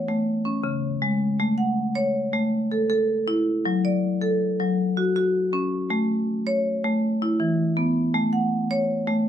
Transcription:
0, 0, Header, 1, 2, 480
1, 0, Start_track
1, 0, Key_signature, 3, "major"
1, 0, Tempo, 374532
1, 1801, Time_signature, 12, 3, 24, 8
1, 11901, End_track
2, 0, Start_track
2, 0, Title_t, "Marimba"
2, 0, Program_c, 0, 12
2, 109, Note_on_c, 0, 57, 73
2, 353, Note_off_c, 0, 57, 0
2, 579, Note_on_c, 0, 61, 62
2, 814, Note_on_c, 0, 49, 75
2, 1306, Note_on_c, 0, 56, 74
2, 1307, Note_off_c, 0, 49, 0
2, 1310, Note_off_c, 0, 61, 0
2, 1792, Note_on_c, 0, 57, 86
2, 1793, Note_off_c, 0, 56, 0
2, 2021, Note_on_c, 0, 78, 61
2, 2277, Note_off_c, 0, 57, 0
2, 2505, Note_on_c, 0, 73, 82
2, 2751, Note_off_c, 0, 78, 0
2, 2991, Note_on_c, 0, 57, 80
2, 2993, Note_off_c, 0, 73, 0
2, 3476, Note_off_c, 0, 57, 0
2, 3480, Note_on_c, 0, 69, 65
2, 3697, Note_off_c, 0, 69, 0
2, 3712, Note_on_c, 0, 69, 74
2, 4196, Note_off_c, 0, 69, 0
2, 4198, Note_on_c, 0, 64, 79
2, 4679, Note_off_c, 0, 64, 0
2, 4684, Note_on_c, 0, 54, 95
2, 4930, Note_on_c, 0, 74, 69
2, 5162, Note_off_c, 0, 54, 0
2, 5402, Note_on_c, 0, 69, 75
2, 5645, Note_off_c, 0, 74, 0
2, 5880, Note_off_c, 0, 69, 0
2, 5893, Note_on_c, 0, 54, 78
2, 6366, Note_off_c, 0, 54, 0
2, 6372, Note_on_c, 0, 66, 68
2, 6598, Note_off_c, 0, 66, 0
2, 6613, Note_on_c, 0, 66, 75
2, 7086, Note_off_c, 0, 66, 0
2, 7087, Note_on_c, 0, 61, 81
2, 7563, Note_off_c, 0, 61, 0
2, 7566, Note_on_c, 0, 57, 93
2, 8042, Note_off_c, 0, 57, 0
2, 8287, Note_on_c, 0, 73, 83
2, 8762, Note_off_c, 0, 73, 0
2, 8769, Note_on_c, 0, 57, 84
2, 9003, Note_off_c, 0, 57, 0
2, 9255, Note_on_c, 0, 64, 72
2, 9482, Note_on_c, 0, 52, 80
2, 9955, Note_on_c, 0, 59, 81
2, 9959, Note_off_c, 0, 52, 0
2, 9965, Note_off_c, 0, 64, 0
2, 10435, Note_off_c, 0, 59, 0
2, 10437, Note_on_c, 0, 57, 92
2, 10672, Note_on_c, 0, 78, 66
2, 10915, Note_off_c, 0, 57, 0
2, 11159, Note_on_c, 0, 73, 84
2, 11393, Note_off_c, 0, 78, 0
2, 11627, Note_on_c, 0, 57, 88
2, 11636, Note_off_c, 0, 73, 0
2, 11870, Note_off_c, 0, 57, 0
2, 11901, End_track
0, 0, End_of_file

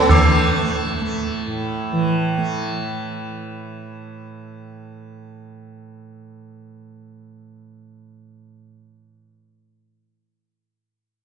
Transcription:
0, 0, Header, 1, 4, 480
1, 0, Start_track
1, 0, Tempo, 357995
1, 138, Time_signature, 7, 2, 24, 8
1, 15076, End_track
2, 0, Start_track
2, 0, Title_t, "Sitar"
2, 0, Program_c, 0, 104
2, 0, Note_on_c, 0, 59, 103
2, 25, Note_on_c, 0, 69, 41
2, 140, Note_off_c, 0, 59, 0
2, 141, Note_on_c, 0, 57, 82
2, 248, Note_off_c, 0, 69, 0
2, 4935, Note_off_c, 0, 57, 0
2, 15076, End_track
3, 0, Start_track
3, 0, Title_t, "Tanpura"
3, 0, Program_c, 1, 104
3, 0, Note_on_c, 1, 45, 69
3, 0, Note_on_c, 1, 52, 74
3, 0, Note_on_c, 1, 57, 66
3, 35, Note_off_c, 1, 57, 0
3, 35, Note_on_c, 1, 57, 65
3, 149, Note_off_c, 1, 52, 0
3, 149, Note_on_c, 1, 52, 62
3, 757, Note_off_c, 1, 57, 0
3, 757, Note_on_c, 1, 57, 66
3, 1360, Note_off_c, 1, 57, 0
3, 1360, Note_on_c, 1, 57, 69
3, 1965, Note_off_c, 1, 45, 0
3, 1970, Note_on_c, 1, 45, 69
3, 2577, Note_off_c, 1, 52, 0
3, 2577, Note_on_c, 1, 52, 66
3, 3189, Note_off_c, 1, 57, 0
3, 3189, Note_on_c, 1, 57, 67
3, 11371, Note_off_c, 1, 57, 0
3, 11557, Note_off_c, 1, 45, 0
3, 12164, Note_off_c, 1, 52, 0
3, 15076, End_track
4, 0, Start_track
4, 0, Title_t, "Tabla"
4, 126, Note_on_c, 9, 60, 120
4, 126, Note_on_c, 9, 64, 110
4, 260, Note_off_c, 9, 60, 0
4, 260, Note_off_c, 9, 64, 0
4, 15076, End_track
0, 0, End_of_file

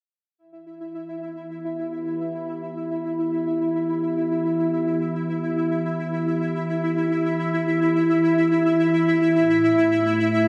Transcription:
0, 0, Header, 1, 3, 480
1, 0, Start_track
1, 0, Key_signature, 1, "minor"
1, 0, Tempo, 500000
1, 10061, End_track
2, 0, Start_track
2, 0, Title_t, "Synth texture"
2, 0, Program_c, 0, 99
2, 366, Note_on_c, 0, 64, 80
2, 368, Note_on_c, 0, 76, 84
2, 10061, Note_off_c, 0, 64, 0
2, 10061, Note_off_c, 0, 76, 0
2, 10061, End_track
3, 0, Start_track
3, 0, Title_t, "Analog synth pad"
3, 0, Program_c, 1, 89
3, 371, Note_on_c, 1, 52, 64
3, 850, Note_on_c, 1, 59, 81
3, 997, Note_on_c, 1, 83, 74
3, 1007, Note_on_c, 1, 67, 69
3, 1600, Note_on_c, 1, 76, 84
3, 8983, Note_off_c, 1, 52, 0
3, 8983, Note_on_c, 1, 45, 74
3, 9216, Note_on_c, 1, 64, 74
3, 9345, Note_on_c, 1, 57, 86
3, 9864, Note_off_c, 1, 59, 0
3, 10061, Note_off_c, 1, 45, 0
3, 10061, Note_off_c, 1, 57, 0
3, 10061, Note_off_c, 1, 64, 0
3, 10061, Note_off_c, 1, 67, 0
3, 10061, Note_off_c, 1, 76, 0
3, 10061, Note_off_c, 1, 83, 0
3, 10061, End_track
0, 0, End_of_file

